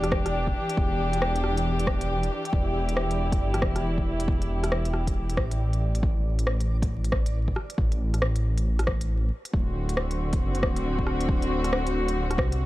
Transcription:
Already playing: E1 E3 D4 G4 D5
0.04 cross-stick, closed hi-hat
0.12 kick, cross-stick
0.26 cross-stick, closed hi-hat
0.47 kick
0.69 closed hi-hat
0.77 E1, kick
1.13 closed hi-hat
1.22 cross-stick
1.36 closed hi-hat
1.44 cross-stick
1.57 closed hi-hat
1.79 closed hi-hat
1.87 kick, cross-stick
2.01 closed hi-hat
2.23 closed hi-hat
2.45 closed hi-hat
2.53 E1 E4, kick
2.89 closed hi-hat
2.97 cross-stick
3.11 closed hi-hat
3.32 kick, closed hi-hat
3.41 G1
3.54 cross-stick, closed hi-hat
3.62 E1, kick, cross-stick
3.76 cross-stick, closed hi-hat
3.98 kick
4.20 closed hi-hat
4.28 E1, kick
4.42 closed hi-hat
4.64 cross-stick, closed hi-hat
4.72 cross-stick
4.85 closed hi-hat
4.94 cross-stick
5.07 kick, closed hi-hat
5.30 closed hi-hat
5.37 A1, kick, cross-stick
5.51 closed hi-hat
5.73 closed hi-hat
5.95 closed hi-hat
6.03 A1, kick
6.39 closed hi-hat
6.47 cross-stick
6.60 closed hi-hat
6.82 kick, closed hi-hat
7.04 closed hi-hat
7.12 kick, cross-stick
7.26 closed hi-hat
7.48 kick
7.56 cross-stick
7.70 closed hi-hat
7.78 A1, kick
7.92 closed hi-hat
8.14 cross-stick, closed hi-hat
8.22 cross-stick
8.36 closed hi-hat
8.58 closed hi-hat
8.79 cross-stick, closed hi-hat
8.87 kick, cross-stick
9.01 closed hi-hat
9.45 closed hi-hat
9.54 D1 D3 C4 F#4, kick
9.89 closed hi-hat
9.97 cross-stick
10.11 closed hi-hat
10.33 kick, closed hi-hat
10.41 F#1
10.55 closed hi-hat
10.63 D1, kick, cross-stick
10.76 closed hi-hat
10.99 kick
11.07 cross-stick
11.21 closed hi-hat
11.29 D1, kick
11.42 closed hi-hat
11.64 cross-stick, closed hi-hat
11.73 cross-stick
11.87 closed hi-hat
12.08 closed hi-hat
12.31 cross-stick, closed hi-hat
12.38 C2, kick, cross-stick
12.52 closed hi-hat

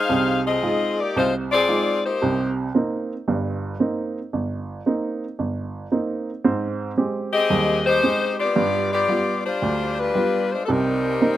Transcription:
Already playing: D#4 G#4 C5 F5
0.09 C2 C3
0.47 C4 F4 G#4 D#5
0.62 G#3 D#4 F4
0.99 A#3 D#4 G4 D5
1.16 C2 G#3 D#4 F4 C5
1.51 C4 F4 G#4 D5
1.68 G#3 D#4 F4
2.05 A#3 D#4 G4 C5
2.22 C2 C3
2.75 A#3 C4 D#4
3.28 G1 G2
3.80 A#3 C4 D#4
4.33 G1
4.86 A#3 C4 D#4
5.39 G1
5.92 A#3 C4 D#4
6.45 G#2 C4
6.97 G#3 C4 G4
7.33 C4 G4 G#4 D#5
7.50 D#2 G3
7.86 G#3 D#4 G4 C5
8.03 G#3 C4 G4
8.39 B3 F4 G4 D5
8.56 G2
8.92 B3 F4 G4 D5
9.08 G3 B3 F4
9.46 G3 D4 F4 C5
9.62 D2
9.99 G3 D4 F4 B4
10.15 G3 B3 F4
10.52 G#3 D4 F4 C5
10.65 C2 C3 A4
10.70 G3 C4 D#4 A#4
11.21 A#3 C4 D#4

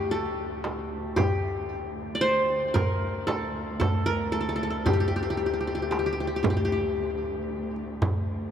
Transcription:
Already playing: D2 G4
0.11 A4
0.64 darbuka tek, frame drum
1.16 G4, darbuka dum, frame drum
2.15 D5
2.21 C5
2.49 darbuka ka
2.74 A#4, darbuka dum, frame drum
3.27 A4, darbuka tek, frame drum
3.80 A4, frame drum, darbuka dum
4.06 A#4
4.32 A4, darbuka ka
4.41 A4
4.49 A4
4.56 A4
4.63 A4
4.70 A4
4.86 G4, frame drum, darbuka dum
4.93 G4
5.00 G4
5.08 G4
5.16 G4
5.23 G4
5.30 G4
5.37 G4
5.46 G4
5.54 G4
5.61 G4
5.67 G4
5.75 G4
5.82 G4
5.91 G4, darbuka tek, frame drum
5.99 G4
6.06 G4
6.13 G4
6.20 G4
6.27 G4
6.36 G4
6.43 G4, frame drum, darbuka dum
6.50 G4
6.57 G4
6.65 G4
6.72 G4
7.76 darbuka ka
8.02 darbuka dum, frame drum

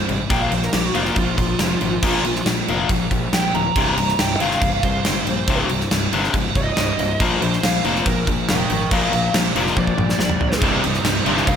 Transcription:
0.09 G#1 C2 G2, crash
0.29 A#1 A#2 F3 A#3 G5, kick, crash
0.42 F5
0.51 A#1 A#2 F3 C5, crash
0.63 A#4, snare
0.73 A#1 A#2 F3 G4, snare, crash
0.85 F#4
0.94 F1 A#2 F3 A#3 F4, crash
1.05 snare
1.16 A#1 A#2 F3 F4, kick, crash
1.37 A#1 A#2 F3, kick, crash
1.59 F1 A#2 F3, snare, crash
1.81 G#1 A#2 F3, crash
2.03 A#1 A#2 F3 A#3, kick, crash
2.25 A#1 A#2 F3, crash
2.36 snare
2.46 A#1 A#2 F3, snare, crash
2.68 F1 A#2 F3 A#3, crash
2.89 A#1 A#2 F3, kick, crash
3.11 A#1 A#2 F3, kick, crash
3.33 A#1 A#2 F3 G5, snare, crash
3.54 D1 A#2 F3 A#5, crash
3.76 C1 C2 G2 C3, kick, crash
3.97 C1 C2 G2 A#5, crash
4.09 snare
4.19 C1 C2 G2 G5, snare, crash
4.40 G1 C2 G2 C3 F5, crash
4.51 snare
4.61 C1 C2 G2, kick, crash
4.83 C2 G2 C5, kick, crash
5.05 G1 C2 G2, snare, crash
5.27 A#1 C2 G2, crash
5.48 C1 C2 G2 C3, kick, crash
5.69 C1 C2 G2, crash
5.81 snare
5.91 C1 C2 G2, snare, crash
6.13 G1 C2 G2 C3, crash
6.24 snare
6.33 C1 C2 G2, kick, crash
6.55 C1 C2 G2 D#5, kick, crash
6.76 C1 C2 G2, snare, crash
6.98 C1 C2 G2, crash
7.20 A#1 A#2 F3 A#3, kick, crash
7.40 A#1 A#2 F3 C5, crash
7.53 snare
7.63 A#1 A#2 F3 F5, snare, crash
7.84 F1 A#2 F3 A#3 C5, crash
7.95 snare
8.06 A#1 A#2 F3 A#4, kick, crash
8.27 A#1 A#2 F3, kick, crash
8.48 F1 A#2 F3 A#4 G5, snare, crash
8.70 G#1 A#2 F3 A#4 G5, crash
8.91 A#1 A#2 F3 A#3 D5 F5, kick, crash
9.12 A#1 A#2 F3 D5 F5, crash
9.34 A#1 A#2 F3 G4 C5, snare, crash
9.55 F1 A#2 F3 A#3 G4 C5, crash
9.67 snare
9.76 A#1 A#2 F3 D5, kick, high tom
9.87 kick
9.98 A#1 A#2 F3, mid tom
10.09 snare
10.19 A#1 A#2 F3, snare
10.29 mid tom
10.40 A#1 A#2 F3, floor tom
10.52 snare
10.62 C1 C2 G2 C3 G3 D#4, kick, crash
10.84 C1 C2 G2, crash
10.94 snare
11.04 C1 C2 G2, snare, crash
11.25 G1 C2 G2 C3, crash
11.37 snare
11.47 C1 C2 G2 C3 G3 D#4 F5, kick, crash

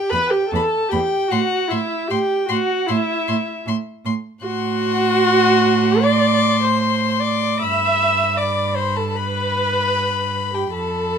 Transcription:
Already playing: G4 G5
0.10 E2 B4 B5
0.30 G4 G5
0.49 A4 A5
0.53 E2 B5
0.89 G4 G5 B5
0.93 E2
1.28 F#4 F#5
1.32 A2 C6
1.68 A2 E4 E5 C6
2.07 A2 G4 G5 C6
2.48 A2 F#4 F#5 C6
2.86 A2 E4 C6
2.90 E5
3.28 A2 C6
3.66 A2 C6
4.05 A2 C6
4.42 A2 F#4 F#5 C6
6.02 D5 C6 D6
6.63 C5 C6
7.20 D5 D6
7.60 G2 E5 B5 E6
8.36 D5 B5 D6
8.77 C5 C6
8.96 A4 A5
9.15 B4 B5
10.54 G4 G5
10.72 F2 A4 A5 B5

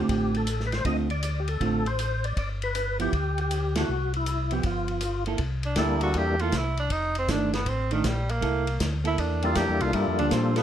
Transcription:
Already playing: D3 A3
0.00 C4 F4 G4
0.09 A1, kick, ride
0.34 A4, ride
0.47 hi-hat pedal, ride
0.60 snare
0.67 B4
0.72 C5, snare, ride
0.85 D2 D3 A3 C4 F4 D#5, kick, ride
1.10 D5, ride
1.23 hi-hat pedal, ride
1.40 G4
1.48 A4, ride
1.60 A1 D3 A3 C4 F4, kick, ride
1.86 C5, ride
1.99 hi-hat pedal, ride
2.24 D5, ride
2.36 G1 D5, kick, ride
2.62 B4, ride
2.75 hi-hat pedal, ride
2.99 F3 B3 E4 G4, ride
3.13 D2, kick, ride
3.38 G4, ride
3.51 hi-hat pedal, ride
3.75 A#3 E4 F#4 A4, snare, ride
3.89 C2
4.14 E4, ride
4.26 hi-hat pedal, ride
4.51 F3 B3 G4, ride
4.63 G1 F4, kick, ride
4.88 ride
5.01 hi-hat pedal, ride
5.26 A#3 E4 A4, ride
5.38 C2, kick, ride
5.63 D4, ride
5.76 D2 G3 A#3 D4 E4 A4, kick, snare, hi-hat pedal, ride
5.80 E4
6.01 F#4, ride
6.14 E2, kick, ride
6.18 G4
6.39 A#3 E4 F4 A4, ride
6.52 C2, kick, snare, hi-hat pedal, ride
6.57 E4
6.77 D4, ride
6.90 F1 D#4, kick, ride
7.15 C4, ride
7.28 G1 D#3 A3 D4, kick, snare, hi-hat pedal, ride
7.53 B3, snare, ride
7.66 A1 C4, kick, ride
7.91 D#3 A3 D4, ride
8.04 A#1 G3, kick, snare, hi-hat pedal, ride
8.29 A#3, ride
8.41 C2 A#3 E4 A4, kick, ride
8.67 ride
8.80 D2, kick, snare, hi-hat pedal, ride
9.04 A#3 E4 A4, ride
9.18 E2 D4, kick, ride
9.42 G3 A#3 D4 E4 F4 A4, ride
9.55 F2 G4, kick, snare, hi-hat pedal, ride
9.69 E2
9.80 C2 F4, ride
9.93 G2 G3 A#3 D4 E4 F4 A4, kick, ride
10.07 F2
10.19 D2 F3 A#3 D4, ride
10.31 A#2 C4, kick, snare, hi-hat pedal, ride
10.56 A#3 B3 E4 A4, snare, ride

